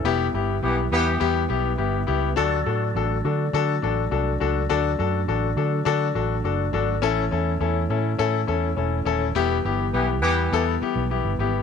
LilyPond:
<<
  \new Staff \with { instrumentName = "Grand piano" } { \time 4/4 \key d \major \tempo 4 = 103 << { <cis' a'>16 r2. r8. | r1 | r1 | r1 |
r1 | } \\ { <b e' g'>8 <b e' g'>8 <b e' g'>8 <b e' g'>8 <b e' g'>8 <b e' g'>8 <b e' g'>8 <b e' g'>8 | <d' fis' a'>8 <d' fis' a'>8 <d' fis' a'>8 <d' fis' a'>8 <d' fis' a'>8 <d' fis' a'>8 <d' fis' a'>8 <d' fis' a'>8 | <d' fis' a'>8 <d' fis' a'>8 <d' fis' a'>8 <d' fis' a'>8 <d' fis' a'>8 <d' fis' a'>8 <d' fis' a'>8 <d' fis' a'>8 | <cis' e' a'>8 <cis' e' a'>8 <cis' e' a'>8 <cis' e' a'>8 <cis' e' a'>8 <cis' e' a'>8 <cis' e' a'>8 <cis' e' a'>8 |
<b e' g'>8 <b e' g'>8 <b e' g'>8 <b e' g'>8 <b e' a'>8 <b e' g'>8 <b e' g'>8 <b e' g'>8 | } >> }
  \new Staff \with { instrumentName = "Horn section" } { \time 4/4 \key d \major r4 <e b g'>16 r16 <e b g'>8. r4. r16 | r1 | r1 | r1 |
r4 <e b g'>16 r16 <e b g'>8. r4. r16 | }
  \new Staff \with { instrumentName = "Tonewheel organ" } { \time 4/4 \key d \major e'1 | d'1~ | d'1 | cis'1 |
b1 | }
  \new Staff \with { instrumentName = "Tonewheel organ" } { \clef bass \time 4/4 \key d \major << { b1 | a1~ | a1~ | a1 |
g1 | } \\ { g1 | fis1~ | fis1 | e1~ |
e1 | } >> }
  \new Staff \with { instrumentName = "Fingered electric bass" } { \clef bass \time 4/4 \key d \major e,,8 g,,8 b,,8 e,8 e,8 b,,8 g,,8 cis,8 | d,8 a,8 a,,8 d8 d8 a,,8 c,8 cis,8 | d,8 fis,8 a,,8 d8 d8 a,,8 fis,,8 gis,,8 | a,,8 e,8 e,8 a,8 a,8 e,8 e,,8 ees,,8 |
e,,8 g,,8 b,,8 e,8 e,8 r16 b,,8 g,,16 gis,,8 | }
>>